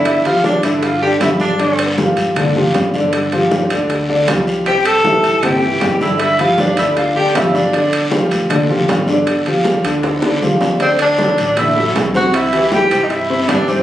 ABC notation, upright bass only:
X:1
M:4/4
L:1/8
Q:1/4=156
K:C
V:1 name="Upright bass" clef=bass
G,,,3 G,,3 G,,2- | G,,3 G,,3 G,,2- | G,,3 D,,3 C,,2- | C,,3 G,,3 G,,2- |
G,,3 D,,3 G,,,2- | G,,,3 D,,3 G,,,2- | G,,,3 D,,3 D,,2- | D,,3 A,,,3 C,,2- |
C,,3 G,,3 G,,2 |]